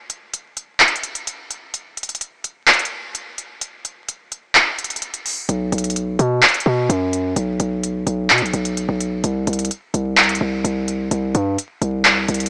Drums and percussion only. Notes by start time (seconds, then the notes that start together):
0.10 closed hi-hat
0.34 closed hi-hat
0.57 closed hi-hat
0.80 clap, closed hi-hat
0.88 closed hi-hat
0.96 closed hi-hat
1.03 closed hi-hat
1.15 closed hi-hat
1.27 closed hi-hat
1.51 closed hi-hat
1.74 closed hi-hat
1.97 closed hi-hat
2.03 closed hi-hat
2.09 closed hi-hat
2.15 closed hi-hat
2.21 closed hi-hat
2.44 closed hi-hat
2.68 clap, closed hi-hat
2.73 closed hi-hat
2.79 closed hi-hat
2.85 closed hi-hat
3.15 closed hi-hat
3.38 closed hi-hat
3.61 closed hi-hat
3.85 closed hi-hat
4.09 closed hi-hat
4.32 closed hi-hat
4.55 clap, closed hi-hat
4.79 closed hi-hat
4.84 closed hi-hat
4.90 closed hi-hat
4.96 closed hi-hat
5.02 closed hi-hat
5.14 closed hi-hat
5.26 open hi-hat
5.49 closed hi-hat
5.72 closed hi-hat
5.78 closed hi-hat
5.84 closed hi-hat
5.90 closed hi-hat
5.96 closed hi-hat
6.19 closed hi-hat
6.43 clap, closed hi-hat
6.49 closed hi-hat
6.54 closed hi-hat
6.60 closed hi-hat
6.90 closed hi-hat
7.13 closed hi-hat
7.36 closed hi-hat
7.60 closed hi-hat
7.83 closed hi-hat
8.07 closed hi-hat
8.30 clap, closed hi-hat
8.38 closed hi-hat
8.46 closed hi-hat
8.53 closed hi-hat
8.65 closed hi-hat
8.77 closed hi-hat
9.00 closed hi-hat
9.24 closed hi-hat
9.47 closed hi-hat
9.53 closed hi-hat
9.59 closed hi-hat
9.65 closed hi-hat
9.71 closed hi-hat
9.94 closed hi-hat
10.17 clap, closed hi-hat
10.23 closed hi-hat
10.29 closed hi-hat
10.35 closed hi-hat
10.65 closed hi-hat
10.88 closed hi-hat
11.11 closed hi-hat
11.35 closed hi-hat
11.58 closed hi-hat
11.82 closed hi-hat
12.05 clap, closed hi-hat
12.28 closed hi-hat
12.34 closed hi-hat
12.40 closed hi-hat
12.46 closed hi-hat